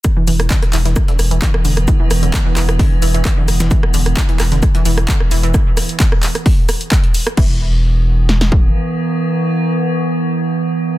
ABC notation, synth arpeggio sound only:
X:1
M:4/4
L:1/16
Q:1/4=131
K:C
V:1 name="Synth arpeggio sound" clef=bass
z E, E, z D, z E, E, z D, z E, E, z D, z | E, E, z D, z E, E, z D, z E, E, z D, z E, | E, z D, z E, E, z D, z E, E, z D, z E, E, | z16 |
E,2 z12 z2 | z16 |]